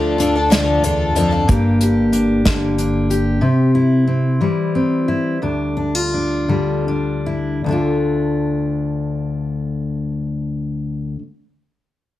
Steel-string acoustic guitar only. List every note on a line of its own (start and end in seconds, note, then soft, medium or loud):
0.00 0.50 D2 medium
0.00 1.47 D3 medium
0.00 1.45 A3 medium
0.00 0.19 D4 medium
0.00 1.45 F4 soft
0.20 1.44 D4 medium
0.51 0.82 D2 medium
0.82 1.15 E2 medium
1.16 1.47 F2 medium
1.48 3.37 G2 medium
1.48 2.44 D3 medium
1.48 2.44 A#3 medium
1.48 2.11 D4 medium
1.48 1.81 G4 medium
1.82 3.10 G4 medium
2.12 2.77 D4 medium
2.45 3.42 D3 medium
2.45 3.38 A#3 soft
2.79 3.38 D4 medium
3.10 3.74 G4 medium
3.41 4.39 C3 medium
3.41 4.06 C4 medium
3.75 5.07 E4 medium
4.07 4.73 C4 medium
4.41 5.37 E3 medium
4.41 6.48 G3 medium
4.75 5.38 C4 medium
5.08 5.37 E4 medium
5.42 7.63 D2 medium
5.42 5.76 D4 soft
5.77 5.95 D4 soft
5.95 7.25 F4 soft
6.14 6.87 D4 soft
6.48 7.65 D3 soft
6.48 7.65 G3 soft
6.88 7.60 D4 soft
7.26 7.60 E4 soft
7.64 11.14 D2 soft
7.64 11.16 D3 soft
7.68 11.18 A3 soft
7.68 11.21 D4 soft
7.68 11.22 F4 soft